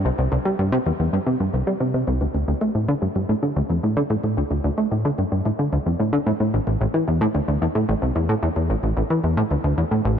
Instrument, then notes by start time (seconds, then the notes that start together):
analog synth bass
0.05 C2
0.18 C2
0.32 C2
0.45 G3
0.59 G2
0.72 C3
0.86 E2
1.00 E2
1.13 G2
1.27 C3
1.40 G2
1.53 C2
1.67 G3
1.80 C3
1.94 C3
2.07 C2
2.21 D2
2.34 D2
2.48 D2
2.61 A3
2.75 A2
2.88 D3
3.02 G2
3.15 G2
3.29 A2
3.43 D3
3.56 D2
3.70 F2
3.83 A2
3.97 D3
4.10 A2
4.24 A2
4.37 D2
4.51 D2
4.64 D2
4.78 A3
4.91 A2
5.05 D3
5.18 G2
5.32 G2
5.45 A2
5.59 D3
5.73 D2
5.86 F2
6.00 A2
6.13 D3
6.26 A2
6.40 A2
6.54 A1
6.67 A1
6.81 A1
6.94 E3
7.08 E2
7.21 A2
7.35 D2
7.48 D2
7.62 E2
7.75 A2
7.89 A1
8.02 C2
8.16 E2
8.29 A2
8.43 E2
8.56 E2
8.70 A1
8.83 A1
8.97 A1
9.10 E3
9.24 E2
9.37 A2
9.51 D2
9.64 D2
9.78 E2
9.91 A2
10.05 A1